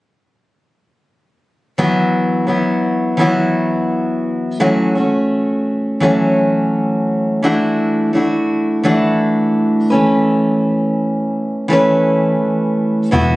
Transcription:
1.78 E3 F#3 B3 E4 F#4
2.47 F#3 B3 E4 F#4
3.17 E3 F#3 B3 E4
3.21 F#4
4.60 E3 F#3 A3 C#4 F#4
4.95 A3 C#4 F#4
6.00 E3 F#3 A3 C#4
6.05 F#4
7.42 E3 A3 D4 E4 F#4
8.13 A3 D4 E4 F#4
8.83 E3 A3 D4 E4 F#4
9.90 A3 C#4 B4
9.95 E3
11.68 E3 A3 C#4
11.73 B4
13.11 E1 E3 B3 E4 F#4

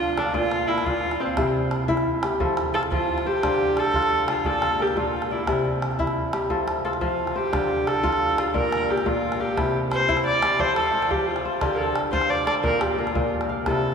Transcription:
Already playing: D3 F4 C5
0.18 D4 A4, calabash click
0.33 A#2 F4 D5, calabash thump
0.52 calabash click
0.68 E4 A#4
0.78 calabash click
0.85 A#2 F4, calabash thump
0.95 calabash click
1.11 calabash click
1.20 C4 F5
1.37 C3 E4, calabash thump, calabash click
1.71 calabash click
1.88 E4, calabash thump
1.97 calabash click
2.23 G4, calabash click
2.40 F3 A4, calabash thump
2.57 calabash click
2.74 F4 A4
2.83 calabash click
2.92 F3 F4, calabash thump
3.00 calabash click
3.18 calabash click
3.26 G4 C5
3.43 D3 F4, calabash thump, calabash click
3.77 A4, calabash click
3.94 F4, calabash thump
4.03 calabash click
4.28 F4 A4, calabash click
4.45 A#2 A4 D5, calabash thump
4.54 calabash click
4.62 calabash click
4.80 G4 A#4
4.87 calabash click
4.96 A#2 F4, calabash thump, calabash click
5.05 calabash click
5.14 calabash click
5.22 calabash click
5.31 E4 D5, calabash click
5.47 C3, calabash thump, calabash click
5.65 calabash click
5.82 calabash click
5.91 calabash click
5.99 E4, calabash thump
6.07 calabash click
6.33 G4, calabash click
6.42 calabash click
6.50 F3 A4, calabash thump
6.68 calabash click
6.85 F4 A4
6.93 calabash click
7.01 F3 F4, calabash thump
7.10 calabash click
7.27 calabash click
7.36 G4 C5
7.53 D3 F4, calabash thump, calabash click
7.87 A4, calabash click
8.04 F4, calabash thump
8.13 calabash click
8.38 F4 A4, calabash click
8.54 A#2 A#4 D5, calabash thump
8.72 calabash click
8.89 G4 A#4
8.98 calabash click
9.06 A#2 F4, calabash thump
9.15 calabash click
9.32 calabash click
9.40 G4 F5
9.57 C3 E4, calabash thump, calabash click
9.91 C5, calabash click
10.08 E4, calabash thump
10.17 calabash click
10.26 D5
10.42 G4, calabash click
10.59 F3 A4 C5, calabash thump
10.76 A4, calabash click
10.93 F4
11.02 calabash click
11.10 F3 G4, calabash thump
11.19 calabash click
11.28 F4
11.36 calabash click
11.45 C5
11.61 D3 F4 G4, calabash thump, calabash click
11.74 A4 A#4
11.96 calabash click
12.12 F4 C5, calabash thump
12.21 calabash click
12.29 D5
12.46 A4 D5, calabash click
12.63 A#2 A#4 D5, calabash thump
12.81 G4, calabash click
12.98 F4 A#4
13.07 calabash click
13.15 A#2, calabash thump
13.41 calabash click
13.49 F5, calabash click
13.66 C3 E4 A4, calabash thump, calabash click

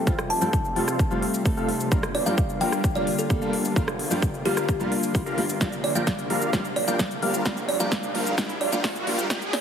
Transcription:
Already playing: C3 G3 A3 F4
0.06 F1 G3 A3 C4 F4 A4 F5, kick, shaker
0.19 cross-stick, shaker
0.30 A5, open hi-hat
0.41 F1 G3 A3 C4 F4 A4 G5 A5, shaker
0.53 kick, shaker
0.65 shaker
0.76 F1 G3 A3 C4 F4 A4 F5, open hi-hat
0.88 cross-stick, shaker
0.99 kick, shaker
1.10 F1 G3 A3 C4 F4 A4 F5, shaker
1.22 open hi-hat
1.34 shaker
1.45 G3 A3 C4 A4, kick, open hi-hat, shaker
1.57 F1 G3 C4 F4 A4 F5, shaker
1.69 open hi-hat
1.80 shaker
1.91 G1 D3 G3 A#3 D4 F4 A#4 F5, kick, shaker
2.03 cross-stick, shaker
2.15 D5, open hi-hat
2.26 G1 G3 A#3 D4 F4 A#4 F5 G5, shaker
2.38 kick, shaker
2.49 shaker
2.60 G1 G3 A#3 D4 F4 A#4 F5 G5, open hi-hat
2.72 cross-stick, shaker
2.84 kick, shaker
2.95 G1 G3 A#3 D4 F4 A#4 D5 F5, shaker
3.07 open hi-hat
3.19 A4, shaker
3.29 G3 A#3 D4 A4, kick, shaker
3.42 G1 G3 D4 F4 A#4 F5, shaker
3.53 open hi-hat
3.65 shaker
3.76 G1 G3 A#3 D4 F4 A#4 F5, kick, shaker
3.88 cross-stick, shaker
3.99 open hi-hat
4.10 G1 G3 A#3 D4 F4 A#4 G5, shaker
4.22 kick, shaker
4.34 shaker
4.45 G1 G3 A#3 D4 F4 G4 A#4 F5, open hi-hat
4.57 cross-stick, shaker
4.69 kick, shaker
4.79 G1 G3 A#3 D4 F4 A#4 F5, shaker
4.92 open hi-hat
5.03 shaker
5.14 G3 A#3 D4 F4, kick, open hi-hat, shaker
5.26 G1 G3 D4 F4 A#4 F5, shaker
5.37 G3 A#3 D4 F4, open hi-hat
5.49 shaker
5.60 A#1 G3 A#3 D4 F4 A#4 F5, kick, snare, closed hi-hat, riser, shaker
5.72 closed hi-hat, shaker
5.84 D5, open hi-hat
5.95 A#1 G3 A#3 D4 F4 A#4 F5 G5, closed hi-hat, shaker
6.07 kick, snare, closed hi-hat, shaker
6.19 closed hi-hat, shaker
6.29 A#1 G3 A#3 D4 F4 A#4 F5, open hi-hat
6.42 closed hi-hat, shaker
6.53 A#1 G3 A#3 D4 F4, kick, snare, closed hi-hat, shaker
6.65 closed hi-hat, shaker
6.76 D5, open hi-hat
6.87 A#1 G3 A#3 D4 F4 A#4 F5 G5, closed hi-hat, shaker
6.99 kick, snare, closed hi-hat, shaker
7.11 closed hi-hat, shaker
7.22 A#1 G3 A#3 D4 F4 A#4 F5, open hi-hat
7.34 closed hi-hat, shaker
7.45 A#1 G3 A#3 D4 F4 A#4 F5, kick, snare, closed hi-hat, shaker
7.57 closed hi-hat, shaker
7.69 D5, open hi-hat
7.80 A#1 G3 A#3 D4 F4 A#4 F5 G5, closed hi-hat, shaker
7.92 kick, snare, closed hi-hat, shaker
8.03 closed hi-hat, shaker
8.14 A#1 G3 A#3 D4 F4 A#4 F5, open hi-hat
8.26 closed hi-hat, shaker
8.37 A#1 G3 A#3 D4 F4 A#4 F5, kick, snare, closed hi-hat, shaker
8.49 closed hi-hat, shaker
8.61 D5, open hi-hat
8.72 A#1 G3 A#3 D4 F4 A#4 F5 G5, closed hi-hat, shaker
8.84 kick, snare, open hi-hat, shaker
8.96 closed hi-hat, shaker
9.06 A#1 G3 A#3 D4 F4 A#4 F5, open hi-hat
9.19 closed hi-hat, shaker
9.29 C2 D3 G3 A#3 C4 D4 F4 G4 A#4, kick, snare, closed hi-hat, shaker
9.42 closed hi-hat, shaker
9.53 D5, snare, open hi-hat

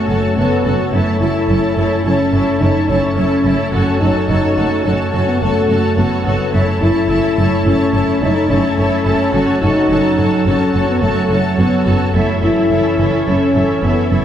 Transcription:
Already playing: A3 C#4 A4 C#5
0.08 F#1 F#2 F#4 A4 C#5 A5
0.37 F#1 F#2 B3 F#4 A4 C#5 A5
0.65 F#1 F#2 F#4 A4 C#5 A5
0.93 F#1 F#2 A3 C#4 E4 A4 C#5 A5
1.20 F#1 F#2 E4 A4 C#5 A5
1.49 F#1 F#2 E4 A4 C#5 A5
1.76 F#1 F#2 E4 A4 C#5 A5
2.05 F#1 F#2 C#4 E4 A4 C#5 A5
2.33 F#1 F#2 E4 A4 C#5 A5
2.60 F#1 F#2 D#4 E4 A4 C#5 A5
2.89 F#1 F#2 C#4 E4 A4 C#5 A5
3.17 F#1 F#2 E4 A4 C#5 A5
3.45 F#1 F#2 E4 A4 C#5 A5
3.73 F#1 F#2 C#4 F#4 A4 C#5 A5
4.00 F#1 F#2 D#4 F#4 A4 C#5 A5
4.29 F#1 F#2 F#4 A4 C#5 A5
4.57 F#1 F#2 F#4 A4 C#5 A5
4.84 F#1 F#2 C#4 F#4 A4 C#5 A5
5.13 F#1 F#2 F#4 A4 C#5 A5
5.28 B3
5.41 F#1 F#2 A3 F#4 A4 C#5 A5
5.70 F#1 F#2 F#4 A4 C#5 A5
5.97 F#1 F#2 B3 F#4 A4 C#5 A5
6.25 F#1 F#2 F#4 A4 C#5 A5
6.53 F#1 F#2 A3 C#4 E4 A4 C#5 A5
6.82 F#1 F#2 E4 A4 C#5 A5
7.09 F#1 F#2 E4 A4 C#5 A5
7.38 F#1 F#2 E4 A4 C#5 A5
7.65 F#1 F#2 C#4 E4 A4 C#5 A5
7.93 F#1 F#2 E4 A4 C#5 A5
8.21 F#1 F#2 D#4 E4 A4 C#5 A5
8.50 F#1 F#2 C#4 E4 A4 C#5 A5
8.78 F#1 F#2 E4 A4 C#5 A5
9.06 F#1 F#2 E4 A4 C#5 A5
9.34 F#1 F#2 F#3 C#4 F#4 A4 C#5 A5
9.61 F#1 F#2 D#4 F#4 A4 C#5 A5
9.90 F#1 F#2 F#4 A4 C#5 A5
10.18 F#1 F#2 F#4 A4 C#5 A5
10.46 F#1 F#2 C#4 F#4 A4 C#5 A5
10.74 F#1 F#2 F#4 A4 C#5 A5
10.88 B3
11.02 F#1 F#2 A3 F#4 A4 C#5 A5
11.30 F#1 F#2 F#4 A4 C#5 A5
11.58 F#1 F#2 B3 F#4 A4 C#5 A5
11.85 F#1 F#2 F#4 A4 C#5 A5
12.14 F#1 F#2 E3 A3 C#4 E4 A4 C#5 E5
12.41 F#1 F#2 E4 A4 C#5 E5
12.70 F#1 F#2 E4 A4 C#5 E5
12.98 F#1 F#2 E4 A4 C#5 E5
13.26 F#1 F#2 C#4 E4 A4 C#5 E5
13.55 F#1 F#2 E4 A4 C#5 E5
13.83 F#1 F#2 B3 E4 A4 C#5 E5
14.11 F#1 F#2 E4 A4 C#5 E5

